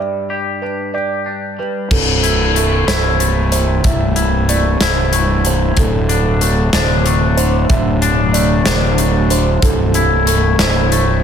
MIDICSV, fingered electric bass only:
0, 0, Header, 1, 2, 480
1, 0, Start_track
1, 0, Tempo, 643777
1, 1428, Time_signature, 6, 3, 24, 8
1, 8376, End_track
2, 0, Start_track
2, 0, Title_t, "Fingered electric bass"
2, 0, Program_c, 0, 33
2, 1424, Note_on_c, 0, 24, 77
2, 2116, Note_off_c, 0, 24, 0
2, 2143, Note_on_c, 0, 24, 83
2, 2835, Note_off_c, 0, 24, 0
2, 2865, Note_on_c, 0, 24, 76
2, 3556, Note_off_c, 0, 24, 0
2, 3584, Note_on_c, 0, 24, 85
2, 4275, Note_off_c, 0, 24, 0
2, 4303, Note_on_c, 0, 26, 77
2, 4994, Note_off_c, 0, 26, 0
2, 5022, Note_on_c, 0, 26, 87
2, 5713, Note_off_c, 0, 26, 0
2, 5739, Note_on_c, 0, 26, 84
2, 6431, Note_off_c, 0, 26, 0
2, 6455, Note_on_c, 0, 26, 85
2, 7149, Note_off_c, 0, 26, 0
2, 7176, Note_on_c, 0, 24, 78
2, 7870, Note_off_c, 0, 24, 0
2, 7898, Note_on_c, 0, 24, 91
2, 8376, Note_off_c, 0, 24, 0
2, 8376, End_track
0, 0, End_of_file